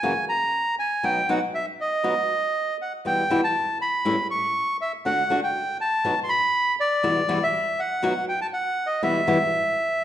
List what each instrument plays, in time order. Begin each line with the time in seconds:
Already playing: bandoneon G#5
0.03 nylon-string guitar F#2 C#3 E3 A#3 C#4 F#4
0.29 bandoneon A#5
0.79 bandoneon G#5
1.03 nylon-string guitar B2 F#3 B3 D#4 F#4, bandoneon G5
1.29 nylon-string guitar B2 F#3 B3 D#4 F#4, bandoneon F#5
1.55 bandoneon E5
1.81 bandoneon D#5
2.04 nylon-string guitar B2 F#3 B3 D#4 F#4
2.82 bandoneon F#5
3.05 nylon-string guitar E2 B2 E3 G3 B3 E4, bandoneon G5
3.30 nylon-string guitar E2 B2 E3 G3 B3 E4
3.44 bandoneon A5
3.81 bandoneon B5
4.05 nylon-string guitar E2 A2 E3 G3 C#4 E4
4.31 bandoneon C#6
4.81 bandoneon E5
5.05 nylon-string guitar D3 A3 D4 F#4, bandoneon F#5
5.30 nylon-string guitar D3 A3 D4 F#4
5.44 bandoneon G5
5.81 bandoneon A5
6.05 nylon-string guitar B2 F#3 B3 D#4 F#4
6.24 bandoneon C6
6.29 bandoneon B5
6.80 bandoneon D5
7.03 nylon-string guitar E2 B2 E3 G3 B3 E4
7.28 nylon-string guitar E2 B2 E3 G3 B3 E4
7.43 bandoneon E5
7.79 bandoneon F#5
8.02 nylon-string guitar B2 F#3 B3 D#4 F#4
8.29 bandoneon G5
8.41 bandoneon A5
8.53 bandoneon F#5
8.87 bandoneon D#5
9.03 nylon-string guitar E2 B2 E3 G3 B3 E4, bandoneon E5
9.27 nylon-string guitar E2 B2 E3 G3 B3 E4